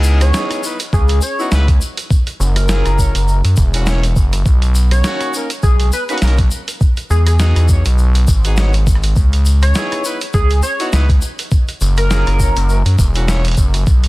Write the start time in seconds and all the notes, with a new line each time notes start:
Already playing: C#2 B3 D#4 E4 G#4
0.04 shaker
0.21 C#5, cross-stick, closed hi-hat, shaker
0.34 B3 D#4 E4 G#4, snare, shaker
0.51 cross-stick, closed hi-hat, shaker
0.63 B3 D#4 E4 B4, shaker
0.80 closed hi-hat, shaker
0.93 C#2 G#4, kick, shaker
1.08 closed hi-hat, shaker
1.22 C#5, shaker
1.39 B3 D#4 E4 F#4, shaker
1.51 C#2 B3 D#4 E4 B4, snare, shaker
1.68 kick, closed hi-hat, shaker
1.81 shaker
1.97 closed hi-hat, shaker
2.10 kick, shaker
2.27 closed hi-hat, shaker
2.40 F#1, shaker
2.56 A#4, cross-stick, closed hi-hat, shaker
2.68 A#3 C#4 E4 G#4, snare, shaker
2.85 F#1, cross-stick, closed hi-hat, shaker
2.99 A#3 C#4 E4 C#5, kick, shaker
3.15 F#1, closed hi-hat, shaker
3.28 shaker
3.44 F#2, closed hi-hat, shaker
3.57 E1, kick, shaker
3.74 A#3 C#4 E4 F#4, closed hi-hat, shaker
3.86 A#3 C#4 E4 C#5, snare, shaker
4.03 closed hi-hat, shaker
4.16 F#1, kick, shaker
4.33 cross-stick, closed hi-hat, shaker
4.46 B1, kick, shaker
4.62 closed hi-hat, shaker
4.75 shaker
4.91 C#5, cross-stick, closed hi-hat, shaker
5.04 A#3 C#4 D#4 F#4, snare, shaker
5.21 cross-stick, closed hi-hat, shaker
5.34 A#3 C#4 D#4 A#4, shaker
5.50 closed hi-hat, shaker
5.63 B1 G#4, kick, shaker
5.80 closed hi-hat, shaker
5.93 B4, shaker
6.09 A#3 C#4 D#4 F#4 B4, closed hi-hat, shaker
6.18 closed hi-hat
6.22 B1 A#3 C#4 D#4 A#4, snare, shaker
6.28 closed hi-hat
6.38 kick, closed hi-hat, shaker
6.51 shaker
6.68 closed hi-hat, shaker
6.81 kick, shaker
6.97 closed hi-hat, shaker
7.10 E2 G#4, shaker
7.27 G#4, cross-stick, closed hi-hat, shaker
7.39 B3 D#4 F#4 G#4, snare, shaker
7.56 E2, cross-stick, closed hi-hat, shaker
7.69 B3 D#4 F#4 C#5, kick, shaker
7.85 B1, closed hi-hat, shaker
7.98 shaker
8.15 closed hi-hat, shaker
8.28 G#1, kick, shaker
8.44 B3 D#4 F#4 G#4, closed hi-hat, shaker
8.57 B3 D#4 F#4 C#5, snare, shaker
8.73 closed hi-hat, shaker
8.87 kick, shaker
8.95 cross-stick
9.03 closed hi-hat, shaker
9.16 C#2, kick, shaker
9.33 closed hi-hat, shaker
9.46 shaker
9.62 C#5, cross-stick, closed hi-hat, shaker
9.74 B3 D#4 E4 G#4, snare, shaker
9.92 cross-stick, closed hi-hat, shaker
10.05 B3 D#4 E4 B4, shaker
10.21 closed hi-hat, shaker
10.34 C#2 G#4, kick, shaker
10.50 closed hi-hat, shaker
10.63 C#5, shaker
10.80 B3 D#4 E4 F#4, closed hi-hat, shaker
10.93 C#2 B3 D#4 E4 B4, snare, shaker
11.09 kick, closed hi-hat, shaker
11.22 shaker
11.39 closed hi-hat, shaker
11.51 kick, shaker
11.68 closed hi-hat, shaker
11.81 F#1, shaker
11.97 A#4, cross-stick, closed hi-hat, shaker
12.10 A#3 C#4 E4 G#4, snare, shaker
12.26 F#1, cross-stick, closed hi-hat, shaker
12.40 A#3 C#4 E4 C#5, kick, shaker
12.56 F#1, closed hi-hat, shaker
12.69 shaker
12.85 F#2, closed hi-hat, shaker
12.98 E1, kick, shaker
13.14 A#3 C#4 E4 F#4, closed hi-hat, shaker
13.28 A#3 C#4 E4 C#5, snare, shaker
13.44 closed hi-hat, shaker
13.48 closed hi-hat
13.51 closed hi-hat
13.55 F#1, kick, closed hi-hat, shaker
13.74 cross-stick, closed hi-hat, shaker
13.87 B1, kick, shaker
14.03 closed hi-hat, shaker